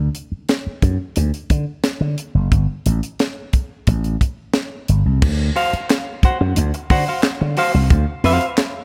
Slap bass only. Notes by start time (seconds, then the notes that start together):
0.32 muted slap bass stroke
0.67 muted slap bass stroke
0.83 F#2
1.17 D2
1.50 D3
2.01 D3
2.35 F#1
2.52 G1
2.86 A1
3.88 A1
4.89 G1
5.05 C2
5.22 D2
5.73 muted slap bass stroke
6.24 muted slap bass stroke
6.41 F#2
6.57 D2
6.90 D3
7.41 D3
7.74 C2
7.90 D2
8.24 F2